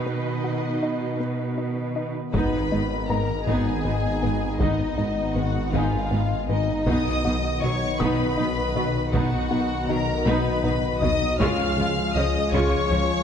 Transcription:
Already playing: cello section B2, analog synth pad D#3 B3 D#4 D#5, viola section D#4 B4, felt piano G#4 G#5
0.06 synth arpeggio sound B3, violin section D#5
0.44 synth arpeggio sound F#4
0.83 synth arpeggio sound D#4
1.20 synth arpeggio sound B3
1.58 synth arpeggio sound D#4
1.96 synth arpeggio sound D#4
2.33 detuned saw bass G#1, double bass section G#1, analog synth bass G#2, cello section G#2, analog synth pad D#3 B3 D#4 D#5, synth arpeggio sound G#3, french horn section B3 D#4, viola section B3 D#4, violin section B4 B5, taiko
2.71 double bass section G#1, cello section G#2, analog synth bass G#3, viola section B3 D#4, synth arpeggio sound D#4
3.09 double bass section G#1, analog synth bass G#2, cello section G#2, viola section G#3 B3, synth arpeggio sound B3, violin section A#4 A#5, felt piano A#4 A#5
3.47 double bass section G#1, analog synth bass G#2, cello section G#2, synth arpeggio sound G#3, viola section B3 D#4, violin section G#4 G#5, taiko
3.85 double bass section G#1, analog synth bass G#2, cello section G#2, viola section B3 D#4, synth arpeggio sound B3
4.23 double bass section G#1, analog synth bass G#2, cello section G#2, viola section G#3 B3, synth arpeggio sound B3
4.59 double bass section G#1, analog synth bass G#2, cello section G#2, synth arpeggio sound G#3, viola section B3 D#4, violin section D#4 D#5, taiko
4.98 double bass section G#1, cello section G#2, analog synth bass G#3, viola section B3 D#4, synth arpeggio sound D#4
5.35 double bass section G#1, cello section G#2, analog synth bass G#2, viola section G#3 B3, synth arpeggio sound B3, violin section F#4 F#5
5.73 double bass section G#1, analog synth bass G#2, cello section G#2, synth arpeggio sound G#3, viola section B3 D#4, violin section F4 F5, felt piano G#5, taiko
6.11 double bass section G#1, cello section G#2, analog synth bass G#2, synth arpeggio sound B3, viola section B3 D#4
6.49 double bass section G#1, analog synth bass G#2, cello section G#2, viola section G#3 B3, synth arpeggio sound B3, violin section D#4 D#5
6.86 double bass section B1, detuned saw bass B1, analog synth bass B2, cello section B2, analog synth pad D#3 B3 F#4 D#5, synth arpeggio sound B3, french horn section B3 D#4, viola section B3 D#4, violin section D#5 D#6, taiko
7.25 double bass section B1, cello section B2, analog synth bass B3, viola section B3 D#4, synth arpeggio sound F#4
7.62 double bass section B1, analog synth bass B2, cello section B2, viola section F#3 B3, synth arpeggio sound D#4, violin section C#5 C#6
8.00 double bass section B1, analog synth bass B2, cello section B2, synth arpeggio sound B3, viola section B3 D#4, violin section B4 B5, felt piano D#6, taiko
8.37 double bass section B1, analog synth bass B2, cello section B2, viola section B3 D#4, synth arpeggio sound D#4
8.75 double bass section B1, analog synth bass B2, cello section B2, viola section F#3 B3, synth arpeggio sound D#4
9.12 double bass section B1, analog synth bass B2, cello section B2, viola section B3 D#4, synth arpeggio sound B3, violin section F#4 F#5, taiko
9.51 double bass section B1, cello section B2, analog synth bass B3, viola section B3 D#4, synth arpeggio sound F#4
9.88 double bass section B1, analog synth bass B2, cello section B2, viola section F#3 B3, synth arpeggio sound D#4, violin section A#4 A#5
10.25 double bass section B1, analog synth bass B2, cello section B2, synth arpeggio sound B3, viola section B3 D#4, violin section B4 B5, taiko high
10.64 double bass section B1, analog synth bass B2, cello section B2, viola section B3 D#4, synth arpeggio sound D#4, taiko low-mid
11.00 double bass section B1, analog synth bass B2, cello section B2, viola section F#3 B3, synth arpeggio sound D#4, violin section D#5 D#6, taiko low
11.39 analog synth bass C#2, double bass section C#2, detuned saw bass C#2, synth arpeggio sound C#3, cello section C#3, analog synth pad F3 G#3 G#4 C#5, french horn section G#3 F4, viola section G#3 F4, felt piano C#5 C#6, violin section F5 F6, taiko
11.77 double bass section C#2, analog synth bass C#3, cello section C#3, synth arpeggio sound G#3, viola section G#3 F4
12.15 double bass section C#2, analog synth bass C#2, cello section C#3, synth arpeggio sound F3, viola section F3 C#4, violin section D#5 D#6
12.52 analog synth bass C#2, double bass section C#2, synth arpeggio sound C#3, cello section C#3, viola section G#3 F4, violin section C#5 C#6, taiko
12.90 analog synth bass C#2, double bass section C#2, cello section C#3, synth arpeggio sound F3, viola section G#3 F4

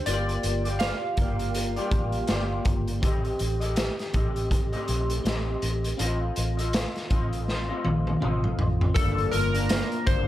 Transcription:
0.06 fingered electric bass G1, clean electric guitar A#3 F4 G4 D5, synth keys D5, closed hi-hat
0.29 closed hi-hat
0.43 fingered electric bass G1, closed hi-hat
0.64 clean electric guitar F4 G4 D5, closed hi-hat
0.79 synth keys F5, snare, closed hi-hat
1.17 fingered electric bass G1, clean electric guitar A#3 F4 G4, kick, closed hi-hat
1.21 clean electric guitar D5
1.39 closed hi-hat
1.54 closed hi-hat
1.76 clean electric guitar G3 A#3 F4 G4 D5, closed hi-hat
1.92 fingered electric bass A1, kick, closed hi-hat
2.12 closed hi-hat
2.27 fingered electric bass G1, clean electric guitar A#3 F4 G4 D5, snare, closed hi-hat
2.65 fingered electric bass G1, kick, closed hi-hat
2.88 closed hi-hat
3.01 fingered electric bass A1, clean electric guitar C4 G4 A4 D#5, kick, closed hi-hat
3.25 closed hi-hat
3.39 fingered electric bass A1, closed hi-hat
3.60 clean electric guitar G4 A4 D#5, closed hi-hat
3.76 snare, closed hi-hat
3.99 snare, closed hi-hat
4.13 fingered electric bass A1, clean electric guitar C4 G4 A4 D#5, kick, closed hi-hat
4.36 closed hi-hat
4.51 kick, closed hi-hat
4.72 clean electric guitar A3 C4 G4 A4 D#5, closed hi-hat
4.88 fingered electric bass A#1, closed hi-hat
5.10 closed hi-hat
5.23 fingered electric bass A1, clean electric guitar C4 G4 A4 D#5, snare, closed hi-hat
5.62 fingered electric bass A1, closed hi-hat
5.84 closed hi-hat
5.97 fingered electric bass A1, clean electric guitar C4 F4 A4 D#5, closed hi-hat
6.36 fingered electric bass A1, closed hi-hat
6.57 clean electric guitar F4 A4 D#5, closed hi-hat
6.73 snare, closed hi-hat
6.96 snare, closed hi-hat
7.10 fingered electric bass A1, clean electric guitar C4 F4 A4 D#5, kick, closed hi-hat
7.33 closed hi-hat
7.48 snare
7.69 clean electric guitar A3 C4 F4 A4 D#5
7.85 fingered electric bass A#1, high tom
8.07 high tom
8.21 fingered electric bass A1, clean electric guitar C4 F4 A4 D#5, mid tom
8.44 mid tom
8.59 fingered electric bass A1, floor tom
8.81 floor tom
8.94 fingered electric bass G1, clean electric guitar G2 D3 F3 A#3, synth keys A4, kick, closed hi-hat
8.98 clean electric guitar D4
9.18 closed hi-hat
9.31 fingered electric bass G1, synth keys A#4, closed hi-hat
9.54 clean electric guitar F3 A#3 D4, closed hi-hat
9.69 snare, closed hi-hat
9.92 closed hi-hat
10.06 fingered electric bass G1, clean electric guitar G2 D3 F3 A#3 D4, synth keys C5, kick, closed hi-hat

